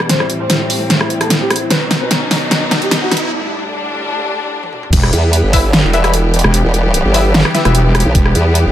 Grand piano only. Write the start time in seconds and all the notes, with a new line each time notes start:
0.09 C5
0.20 E4
0.30 E4
0.40 C5
0.50 E4
0.60 E4
0.70 E4
0.90 E4
1.01 E4
1.10 E4
1.21 A4
1.30 E4
1.41 G4
1.50 E4
1.61 E4
1.70 B4
1.81 B3
1.91 B3
2.01 B4
2.11 B3
2.22 B3
2.31 B3
2.51 B3
2.62 B3
2.71 B3
2.82 G4
2.91 B3
3.02 F#4
3.11 B3
3.22 B3